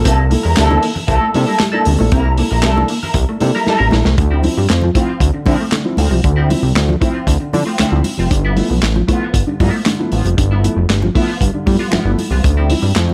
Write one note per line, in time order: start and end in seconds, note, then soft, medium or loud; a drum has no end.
0.04 0.36 C2 loud
0.04 0.18 C3 medium
0.04 0.18 G3 medium
0.04 0.23 A#3 medium
0.04 0.12 C4 medium
0.04 0.18 E4 medium
0.04 0.17 A4 loud
0.04 kick loud
0.04 closed hi-hat loud
0.18 muted clean electric guitar stroke medium
0.30 0.38 A#3 medium
0.30 0.43 E4 medium
0.30 0.43 A4 medium
0.30 muted clean electric guitar stroke soft
0.30 open hi-hat medium
0.30 muted conga soft
0.30 high conga medium
0.43 0.55 E2 medium
0.43 0.55 A#3 medium
0.43 0.56 E4 medium
0.43 0.57 A#4 medium
0.56 0.79 D2 loud
0.56 0.69 C3 medium
0.56 0.69 G3 medium
0.56 0.80 A#3 medium
0.56 0.81 E4 medium
0.56 0.81 A4 loud
0.56 muted clean electric guitar stroke soft
0.56 snare loud
0.56 clap medium
0.56 closed hi-hat medium
0.56 muted conga soft
0.69 0.77 A3 medium
0.69 0.82 A#3 medium
0.69 0.82 D4 medium
0.69 0.82 E4 medium
0.69 0.82 A4 medium
0.69 low conga medium
0.82 0.90 A#3 medium
0.82 0.88 E4 soft
0.82 0.88 A4 soft
0.82 muted clean electric guitar stroke soft
0.82 open hi-hat medium
0.82 muted conga soft
0.95 muted clean electric guitar stroke medium
0.95 low conga medium
1.07 1.19 C2 loud
1.07 1.26 A#3 medium
1.07 1.26 E4 loud
1.07 1.26 A4 loud
1.07 kick loud
1.07 closed hi-hat medium
1.21 1.29 A3 medium
1.34 1.45 C3 loud
1.34 1.47 A#3 medium
1.34 1.47 D4 medium
1.34 1.47 E4 medium
1.34 1.47 A4 loud
1.34 muted clean electric guitar stroke soft
1.34 open hi-hat medium
1.34 high conga medium
1.46 1.55 G3 medium
1.46 1.59 A#3 medium
1.46 1.59 E4 medium
1.46 1.60 A4 medium
1.60 1.68 G3 loud
1.60 muted clean electric guitar stroke soft
1.60 snare loud
1.60 clap medium
1.60 closed hi-hat medium
1.60 muted conga soft
1.60 high conga medium
1.72 1.85 A#3 medium
1.72 1.85 D4 medium
1.72 1.85 E4 medium
1.72 1.86 A4 medium
1.72 1.85 A4 medium
1.72 muted clean electric guitar stroke soft
1.85 1.97 D2 medium
1.85 1.98 C3 medium
1.85 1.98 G3 medium
1.85 muted clean electric guitar stroke soft
1.85 open hi-hat medium
1.85 muted conga soft
1.85 high conga medium
1.99 2.10 A#1 medium
1.99 2.06 A3 medium
1.99 2.11 A#3 medium
1.99 2.11 D4 medium
1.99 2.11 E4 medium
1.99 2.11 A4 loud
1.99 muted clean electric guitar stroke soft
1.99 low conga medium
2.12 2.43 C2 loud
2.12 2.24 C3 medium
2.12 2.24 G3 medium
2.12 2.30 A#3 medium
2.12 2.20 C4 medium
2.12 2.30 E4 medium
2.12 2.30 A#4 loud
2.12 kick loud
2.12 closed hi-hat loud
2.26 muted clean electric guitar stroke soft
2.38 2.46 A#3 medium
2.38 2.50 E4 medium
2.38 2.50 A4 medium
2.38 muted clean electric guitar stroke medium
2.38 open hi-hat medium
2.38 muted conga soft
2.38 high conga medium
2.51 2.66 A#1 medium
2.51 2.62 A#3 medium
2.51 2.64 E4 medium
2.51 2.64 A#4 medium
2.63 2.84 C2 loud
2.63 2.76 C3 medium
2.63 2.76 G3 medium
2.63 2.81 A#3 medium
2.63 2.82 E4 medium
2.63 2.82 A4 medium
2.63 muted clean electric guitar stroke soft
2.63 snare loud
2.63 clap loud
2.63 closed hi-hat medium
2.63 muted conga soft
2.63 high conga medium
2.76 2.84 A3 medium
2.76 2.88 A#3 medium
2.76 2.88 D4 medium
2.76 2.88 E4 medium
2.76 2.89 A4 medium
2.76 low conga medium
2.88 2.97 A#3 medium
2.88 2.95 E4 soft
2.88 2.95 A4 soft
2.88 muted clean electric guitar stroke soft
2.88 open hi-hat medium
3.03 3.15 A#3 medium
3.03 3.16 E4 medium
3.03 3.16 A#4 medium
3.03 low conga medium
3.14 3.25 C2 loud
3.14 muted clean electric guitar stroke soft
3.14 kick loud
3.14 closed hi-hat medium
3.29 3.36 A3 medium
3.29 muted clean electric guitar stroke medium
3.40 3.52 C3 medium
3.40 3.52 A#3 medium
3.40 3.52 D4 medium
3.40 3.53 E4 medium
3.40 3.53 A4 medium
3.40 muted clean electric guitar stroke soft
3.40 open hi-hat medium
3.40 high conga medium
3.55 3.63 G3 medium
3.55 3.67 A#3 medium
3.55 3.68 E4 medium
3.55 3.68 A#4 medium
3.66 3.75 G3 medium
3.66 3.91 A#3 medium
3.66 3.78 E4 medium
3.66 3.91 E4 medium
3.66 3.79 A4 medium
3.66 3.91 A#4 medium
3.66 snare medium
3.66 muted conga soft
3.66 high conga medium
3.79 3.90 A1 medium
3.79 3.91 C3 medium
3.79 3.91 G3 medium
3.79 muted clean electric guitar stroke soft
3.91 4.03 A#1 medium
3.91 4.04 E4 medium
3.91 4.04 A4 medium
3.91 muted clean electric guitar stroke soft
3.91 snare medium
3.91 muted conga soft
3.91 high conga medium
4.05 4.16 C2 loud
4.05 4.14 A3 medium
4.05 muted clean electric guitar stroke soft
4.05 snare medium
4.05 low conga medium
4.17 4.49 D2 loud
4.17 4.30 D3 medium
4.17 4.27 A3 medium
4.17 muted clean electric guitar stroke soft
4.17 kick loud
4.17 closed hi-hat loud
4.31 4.43 F3 medium
4.31 4.36 C4 soft
4.31 4.44 C4 medium
4.31 4.44 E4 medium
4.31 4.36 E4 soft
4.43 4.55 F3 medium
4.43 4.55 C4 medium
4.43 4.56 E4 medium
4.43 muted clean electric guitar stroke soft
4.43 open hi-hat medium
4.43 muted conga soft
4.43 high conga medium
4.57 4.67 G2 medium
4.57 4.66 G3 medium
4.57 muted clean electric guitar stroke medium
4.69 4.90 F2 medium
4.69 muted clean electric guitar stroke soft
4.69 snare loud
4.69 clap medium
4.69 closed hi-hat medium
4.69 muted conga soft
4.81 4.91 F3 medium
4.81 muted clean electric guitar stroke soft
4.81 low conga medium
4.94 5.08 F3 medium
4.94 5.07 F3 medium
4.94 5.04 A3 medium
4.94 5.07 C4 medium
4.94 5.07 E4 loud
4.94 5.06 F4 medium
4.94 kick medium
4.94 closed hi-hat medium
4.94 muted conga soft
5.07 5.20 F3 medium
5.07 5.20 C4 medium
5.07 5.21 F4 medium
5.20 5.31 D2 loud
5.20 5.26 C4 soft
5.20 5.26 E4 soft
5.20 muted clean electric guitar stroke soft
5.20 kick medium
5.20 closed hi-hat medium
5.20 muted conga soft
5.33 5.46 D3 medium
5.33 muted clean electric guitar stroke soft
5.46 5.57 D3 loud
5.46 5.58 F3 medium
5.46 5.64 F3 loud
5.46 5.55 F3 medium
5.46 5.58 C4 medium
5.46 5.59 C4 loud
5.46 5.59 E4 medium
5.46 5.58 E4 loud
5.46 kick loud
5.46 open hi-hat medium
5.46 muted conga soft
5.46 high conga medium
5.59 5.68 A3 medium
5.59 muted clean electric guitar stroke medium
5.72 5.84 D3 medium
5.72 5.80 A3 medium
5.72 muted clean electric guitar stroke soft
5.72 snare loud
5.72 clap medium
5.72 closed hi-hat medium
5.72 muted conga soft
5.72 high conga medium
5.84 5.97 F3 medium
5.84 5.96 C4 medium
5.84 5.96 E4 medium
5.84 muted clean electric guitar stroke soft
5.97 6.08 D2 loud
5.97 6.12 F3 medium
5.97 6.03 C4 soft
5.97 6.10 C4 medium
5.97 6.03 E4 soft
5.97 6.10 F4 medium
5.97 open hi-hat medium
5.97 muted conga soft
5.97 high conga medium
6.10 6.21 C2 medium
6.10 6.20 F3 medium
6.10 muted clean electric guitar stroke soft
6.10 low conga medium
6.23 6.55 D2 loud
6.23 6.36 D3 medium
6.23 6.32 A3 medium
6.23 muted clean electric guitar stroke soft
6.23 kick loud
6.23 closed hi-hat loud
6.23 muted conga soft
6.36 6.49 F3 medium
6.36 6.42 C4 soft
6.36 6.49 C4 medium
6.36 6.42 E4 soft
6.36 6.51 E4 medium
6.49 6.62 F3 medium
6.49 6.62 C4 medium
6.49 6.62 E4 medium
6.49 muted clean electric guitar stroke soft
6.49 open hi-hat medium
6.49 muted conga soft
6.49 high conga medium
6.62 6.73 C2 medium
6.62 6.71 G3 medium
6.62 muted clean electric guitar stroke soft
6.75 6.96 D2 loud
6.75 muted clean electric guitar stroke soft
6.75 snare loud
6.75 clap medium
6.75 closed hi-hat medium
6.88 6.96 F3 medium
6.88 muted clean electric guitar stroke soft
6.88 low conga medium
7.00 7.13 F3 medium
7.00 7.14 F3 medium
7.00 7.09 A3 medium
7.00 7.13 C4 medium
7.00 7.14 C4 medium
7.00 7.13 E4 loud
7.00 7.14 E4 medium
7.00 kick loud
7.00 closed hi-hat medium
7.00 muted conga soft
7.14 7.26 F3 soft
7.14 7.26 C4 medium
7.14 7.28 F4 medium
7.27 7.37 D2 loud
7.27 7.32 C4 soft
7.27 7.32 E4 soft
7.27 muted clean electric guitar stroke soft
7.27 kick medium
7.27 closed hi-hat medium
7.27 muted conga soft
7.40 7.52 D3 medium
7.40 muted clean electric guitar stroke medium
7.53 7.64 D3 loud
7.53 7.65 F3 medium
7.53 7.61 F3 medium
7.53 7.65 C4 medium
7.53 7.65 E4 medium
7.53 open hi-hat medium
7.53 muted conga soft
7.53 high conga medium
7.66 7.78 F3 medium
7.66 7.74 A3 medium
7.66 7.79 C4 medium
7.66 7.81 F4 medium
7.78 7.84 D2 medium
7.78 7.91 D3 medium
7.78 7.97 F3 medium
7.78 7.87 A3 loud
7.78 7.97 C4 medium
7.78 7.98 E4 medium
7.78 snare loud
7.78 clap medium
7.78 closed hi-hat medium
7.78 muted conga soft
7.78 high conga medium
7.91 8.02 D2 medium
7.91 8.03 F3 medium
7.91 8.03 C4 medium
7.91 8.03 E4 medium
7.91 muted clean electric guitar stroke soft
8.04 8.10 C4 soft
8.04 8.10 E4 soft
8.04 muted clean electric guitar stroke soft
8.04 open hi-hat medium
8.04 muted conga soft
8.04 high conga medium
8.18 8.29 F1 medium
8.18 8.26 F3 medium
8.18 8.31 F3 soft
8.18 8.32 C4 medium
8.18 8.32 F4 medium
8.18 low conga medium
8.30 8.62 G1 loud
8.30 8.42 G2 medium
8.30 8.42 D3 medium
8.30 8.39 G3 medium
8.30 muted clean electric guitar stroke soft
8.30 kick loud
8.30 closed hi-hat loud
8.43 8.57 F3 medium
8.43 8.49 B3 soft
8.43 8.58 B3 medium
8.43 8.49 E4 soft
8.43 8.59 E4 medium
8.56 8.68 F3 medium
8.56 8.68 A3 medium
8.56 8.68 B3 medium
8.56 8.68 E4 medium
8.56 muted clean electric guitar stroke soft
8.56 open hi-hat medium
8.56 muted conga soft
8.56 high conga medium
8.70 8.80 B1 medium
8.70 8.77 F3 medium
8.70 muted clean electric guitar stroke soft
8.82 9.03 A1 medium
8.82 muted clean electric guitar stroke soft
8.82 snare loud
8.82 clap medium
8.82 closed hi-hat medium
8.82 muted conga soft
8.96 9.03 F3 medium
8.96 muted clean electric guitar stroke soft
8.96 low conga medium
9.07 9.20 F3 medium
9.07 9.23 F3 medium
9.07 9.20 A3 medium
9.07 9.16 A3 medium
9.07 9.20 B3 medium
9.07 9.23 B3 medium
9.07 9.20 E4 loud
9.07 kick medium
9.07 closed hi-hat medium
9.12 9.22 F4 medium
9.23 9.34 F3 medium
9.23 9.35 B3 medium
9.23 9.36 F4 medium
9.34 9.44 G1 loud
9.34 9.39 B3 soft
9.34 9.39 E4 soft
9.34 muted clean electric guitar stroke soft
9.34 kick medium
9.34 closed hi-hat medium
9.34 muted conga soft
9.47 9.59 G2 medium
9.47 9.59 D3 medium
9.47 muted clean electric guitar stroke soft
9.60 9.70 G2 loud
9.60 9.72 F3 medium
9.60 9.68 F3 medium
9.60 9.80 F3 medium
9.60 9.72 A3 medium
9.60 9.72 B3 medium
9.60 9.74 B3 medium
9.60 9.72 E4 medium
9.60 9.73 E4 loud
9.60 kick medium
9.60 open hi-hat medium
9.60 muted conga soft
9.60 high conga medium
9.73 9.81 A3 medium
9.73 muted clean electric guitar stroke soft
9.86 9.98 G2 medium
9.86 9.98 D3 medium
9.86 9.93 A3 medium
9.86 muted clean electric guitar stroke soft
9.86 snare loud
9.86 clap medium
9.86 closed hi-hat medium
9.86 muted conga soft
9.86 high conga medium
9.99 10.11 F3 medium
9.99 10.11 A3 medium
9.99 10.11 B3 medium
9.99 10.10 E4 medium
9.99 muted clean electric guitar stroke soft
10.12 10.22 A1 medium
10.12 10.26 F3 medium
10.12 10.17 B3 soft
10.12 10.26 B3 medium
10.12 10.17 E4 soft
10.12 10.25 F4 medium
10.12 open hi-hat medium
10.12 high conga medium
10.25 10.35 F1 medium
10.25 10.32 F3 medium
10.25 muted clean electric guitar stroke soft
10.25 closed hi-hat soft
10.25 low conga medium
10.37 10.69 G1 loud
10.37 10.49 G2 medium
10.37 10.49 D3 medium
10.37 10.45 G3 medium
10.37 muted clean electric guitar stroke soft
10.37 kick loud
10.37 closed hi-hat medium
10.51 10.63 F3 medium
10.51 10.56 B3 soft
10.51 10.64 B3 medium
10.51 10.56 E4 soft
10.51 10.65 E4 medium
10.63 10.75 F3 medium
10.63 10.75 A3 medium
10.63 10.75 B3 medium
10.63 10.75 E4 medium
10.63 muted clean electric guitar stroke soft
10.63 closed hi-hat medium
10.63 high conga medium
10.76 10.87 F1 medium
10.76 10.84 F3 medium
10.76 muted clean electric guitar stroke medium
10.89 11.10 G1 medium
10.89 muted clean electric guitar stroke soft
10.89 snare loud
10.89 clap medium
10.89 closed hi-hat medium
10.89 muted conga soft
10.89 high conga soft
11.02 11.10 F3 medium
11.02 muted clean electric guitar stroke soft
11.02 low conga medium
11.15 11.28 F3 medium
11.15 11.27 F3 loud
11.15 11.22 A3 medium
11.15 11.27 A3 medium
11.15 11.27 B3 medium
11.15 11.27 E4 loud
11.15 11.27 E4 medium
11.15 kick medium
11.15 open hi-hat medium
11.15 muted conga soft
11.28 11.40 F3 medium
11.28 11.41 B3 medium
11.28 11.41 F4 medium
11.41 11.51 G1 loud
11.41 11.46 B3 soft
11.41 11.46 E4 soft
11.41 muted clean electric guitar stroke soft
11.41 kick medium
11.41 closed hi-hat medium
11.54 11.66 G2 medium
11.54 11.66 D3 medium
11.54 muted clean electric guitar stroke soft
11.66 11.77 G2 loud
11.66 11.78 F3 medium
11.66 11.74 G3 medium
11.66 11.78 A3 medium
11.66 11.78 B3 medium
11.66 11.79 E4 medium
11.66 kick loud
11.66 open hi-hat medium
11.66 muted conga soft
11.66 high conga medium
11.79 11.91 F3 medium
11.79 11.87 G3 medium
11.79 11.91 B3 medium
11.79 11.93 F4 medium
11.91 11.97 G1 soft
11.91 12.04 G2 medium
11.91 12.04 D3 medium
11.91 11.99 F3 loud
11.91 12.10 F3 medium
11.91 12.10 B3 medium
11.91 12.11 E4 medium
11.91 snare loud
11.91 clap loud
11.91 closed hi-hat medium
11.91 high conga medium
12.05 12.15 G1 medium
12.05 12.17 F3 medium
12.05 12.18 A3 medium
12.05 12.17 B3 medium
12.05 12.17 E4 medium
12.05 muted clean electric guitar stroke soft
12.18 12.24 B3 soft
12.18 12.24 E4 soft
12.18 muted clean electric guitar stroke soft
12.18 open hi-hat medium
12.18 high conga medium
12.31 12.41 C2 medium
12.31 12.43 F3 medium
12.31 12.38 G3 medium
12.31 12.45 B3 medium
12.31 12.45 F4 medium
12.31 low conga medium
12.44 12.75 D2 loud
12.44 12.56 D3 medium
12.44 12.51 A3 medium
12.44 muted clean electric guitar stroke soft
12.44 kick loud
12.44 closed hi-hat medium
12.44 muted conga soft
12.57 12.70 F3 medium
12.57 12.70 C4 medium
12.57 12.63 C4 soft
12.57 12.71 E4 medium
12.57 12.62 E4 soft
12.70 12.82 F3 medium
12.70 12.82 C4 medium
12.70 12.82 E4 medium
12.70 muted clean electric guitar stroke soft
12.70 open hi-hat medium
12.70 muted conga soft
12.70 high conga medium
12.82 12.93 G2 medium
12.82 12.90 G3 medium
12.82 muted clean electric guitar stroke soft
12.96 13.14 F2 medium
12.96 muted clean electric guitar stroke soft
12.96 snare loud
12.96 clap medium
12.96 closed hi-hat medium
13.08 13.14 F3 medium
13.08 muted clean electric guitar stroke soft
13.08 low conga medium